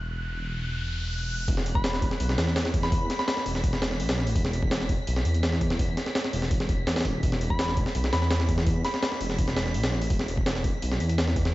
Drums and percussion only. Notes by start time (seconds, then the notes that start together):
1.48 kick, open hi-hat
1.57 snare
1.66 open hi-hat
1.75 kick
1.84 snare, open hi-hat
1.93 snare
2.02 kick, open hi-hat
2.11 snare
2.20 open hi-hat
2.29 snare
2.38 snare, open hi-hat
2.47 snare
2.56 snare, open hi-hat
2.65 snare
2.74 kick, open hi-hat
2.83 snare
2.92 kick, open hi-hat
3.10 snare, open hi-hat
3.19 snare
3.28 snare, open hi-hat
3.37 snare
3.46 open hi-hat
3.55 snare
3.64 kick, open hi-hat
3.73 snare
3.82 snare, open hi-hat
3.91 snare
4.00 open hi-hat
4.09 snare, open hi-hat
4.18 snare
4.27 open hi-hat
4.36 kick, open hi-hat
4.45 snare
4.53 open hi-hat
4.63 kick
4.71 snare, open hi-hat
4.81 snare
4.89 kick, open hi-hat
5.07 open hi-hat
5.16 snare
5.25 open hi-hat
5.34 closed hi-hat
5.43 snare, open hi-hat
5.52 snare
5.61 kick, open hi-hat
5.70 snare
5.79 kick, open hi-hat
5.97 snare, open hi-hat
6.06 snare
6.15 snare, open hi-hat
6.24 snare
6.33 open hi-hat
6.42 snare
6.51 kick, open hi-hat
6.60 snare
6.69 kick, open hi-hat
6.87 snare, open hi-hat
6.96 snare, open hi-hat
7.01 snare, open hi-hat
7.05 kick, open hi-hat
7.23 kick, open hi-hat
7.32 snare
7.41 open hi-hat
7.50 kick
7.59 snare, open hi-hat
7.68 snare
7.77 kick, open hi-hat
7.86 snare
7.95 open hi-hat
8.04 snare
8.13 snare, open hi-hat
8.22 snare
8.31 snare, open hi-hat
8.40 snare
8.49 kick, open hi-hat
8.58 snare
8.67 kick, open hi-hat
8.85 snare, open hi-hat
8.94 snare
9.03 snare, open hi-hat
9.12 snare
9.21 open hi-hat
9.30 snare
9.38 kick, open hi-hat
9.48 snare
9.56 snare, open hi-hat
9.66 snare
9.74 open hi-hat
9.84 snare, open hi-hat
9.92 snare
10.02 open hi-hat
10.10 kick, open hi-hat
10.20 snare
10.28 open hi-hat
10.38 kick
10.46 snare, open hi-hat
10.55 snare
10.64 kick, open hi-hat
10.82 open hi-hat
10.91 snare
11.00 open hi-hat
11.09 closed hi-hat
11.18 snare, open hi-hat
11.27 snare
11.36 kick, open hi-hat
11.45 snare